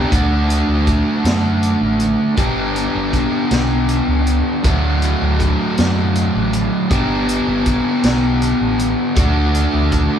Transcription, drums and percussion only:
0.12 kick loud
0.12 closed hi-hat medium
0.50 closed hi-hat medium
0.87 kick medium
0.87 closed hi-hat medium
1.25 snare loud
1.25 closed hi-hat medium
1.63 closed hi-hat medium
2.00 closed hi-hat medium
2.37 kick loud
2.37 closed hi-hat medium
2.76 closed hi-hat medium
3.13 kick medium
3.13 closed hi-hat medium
3.51 snare medium
3.51 closed hi-hat medium
3.89 closed hi-hat medium
4.27 closed hi-hat soft
4.64 kick loud
4.64 closed hi-hat medium
5.02 closed hi-hat medium
5.40 kick medium
5.40 closed hi-hat soft
5.78 snare loud
5.78 closed hi-hat medium
6.15 closed hi-hat medium
6.53 closed hi-hat medium
6.91 kick medium
6.91 closed hi-hat medium
7.29 closed hi-hat medium
7.66 kick medium
7.66 closed hi-hat medium
8.03 snare medium
8.03 closed hi-hat medium
8.42 closed hi-hat medium
8.79 closed hi-hat medium
9.16 kick loud
9.16 closed hi-hat medium
9.55 closed hi-hat medium
9.92 kick medium
9.92 closed hi-hat medium

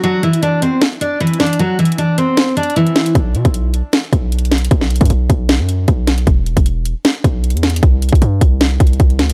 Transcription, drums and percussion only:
0.04 closed hi-hat medium
0.23 closed hi-hat medium
0.33 closed hi-hat medium
0.43 closed hi-hat medium
0.62 closed hi-hat medium
0.81 snare loud
0.81 closed hi-hat medium
1.01 closed hi-hat medium
1.21 closed hi-hat medium
1.27 closed hi-hat medium
1.33 closed hi-hat medium
1.40 snare medium
1.40 closed hi-hat medium
1.46 closed hi-hat medium
1.53 closed hi-hat medium
1.59 closed hi-hat medium
1.79 closed hi-hat medium
1.85 closed hi-hat medium
1.92 closed hi-hat medium
1.98 closed hi-hat medium
2.18 closed hi-hat medium
2.37 snare loud
2.37 closed hi-hat medium
2.57 closed hi-hat medium
2.63 closed hi-hat medium
2.70 closed hi-hat soft
2.76 closed hi-hat medium
2.87 closed hi-hat soft
2.96 snare loud
2.96 closed hi-hat medium
3.06 closed hi-hat medium
3.15 kick loud
3.15 closed hi-hat medium
3.35 closed hi-hat medium
3.45 kick loud
3.45 closed hi-hat medium
3.54 closed hi-hat medium
3.74 closed hi-hat medium
3.93 snare loud
3.93 closed hi-hat medium
4.13 kick loud
4.13 closed hi-hat medium
4.32 closed hi-hat medium
4.39 closed hi-hat medium
4.45 closed hi-hat medium
4.52 snare loud
4.52 closed hi-hat medium
4.58 closed hi-hat medium
4.65 closed hi-hat medium
4.71 kick loud
4.71 closed hi-hat medium
4.81 snare medium
4.90 closed hi-hat medium
4.90 open hi-hat medium
4.96 closed hi-hat medium
5.01 kick medium
5.01 closed hi-hat medium
5.05 closed hi-hat medium
5.10 closed hi-hat medium
5.30 kick medium
5.30 closed hi-hat medium
5.49 snare loud
5.49 closed hi-hat medium
5.69 closed hi-hat medium
5.88 kick loud
5.88 closed hi-hat medium
6.07 snare loud
6.07 closed hi-hat medium
6.18 closed hi-hat medium
6.27 kick loud
6.27 closed hi-hat medium
6.46 closed hi-hat medium
6.57 kick medium
6.57 closed hi-hat medium
6.66 closed hi-hat medium
6.85 closed hi-hat medium
7.05 snare loud
7.05 closed hi-hat medium
7.24 kick loud
7.24 closed hi-hat medium
7.44 closed hi-hat medium
7.50 closed hi-hat medium
7.57 closed hi-hat medium
7.63 snare loud
7.63 closed hi-hat medium
7.70 closed hi-hat medium
7.76 closed hi-hat medium
7.83 kick loud
7.83 closed hi-hat medium
8.02 closed hi-hat medium
8.09 kick loud
8.09 closed hi-hat medium
8.15 closed hi-hat medium
8.22 closed hi-hat medium
8.41 kick medium
8.41 closed hi-hat medium
8.61 snare loud
8.61 closed hi-hat medium
8.80 kick loud
8.80 closed hi-hat medium
8.87 closed hi-hat medium
8.93 closed hi-hat soft
9.00 kick medium
9.00 closed hi-hat medium
9.10 closed hi-hat soft
9.19 snare loud
9.19 closed hi-hat medium
9.30 closed hi-hat medium

